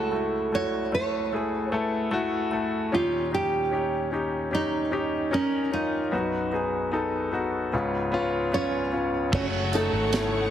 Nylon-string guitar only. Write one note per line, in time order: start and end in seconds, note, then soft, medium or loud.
0.00 0.54 A4 medium
0.55 0.93 C#5 medium
0.95 1.74 C#5 medium
1.74 2.10 B4 medium
2.94 3.34 F4 medium
3.34 4.10 G4 medium
4.55 5.34 D#4 medium
5.34 5.73 C#4 medium
5.73 7.29 D#4 medium
8.54 9.30 C#4 medium
8.54 9.33 C#5 medium
9.35 9.46 C#4 medium
9.35 9.45 C#5 medium
9.75 10.50 A3 medium
9.75 10.50 A4 medium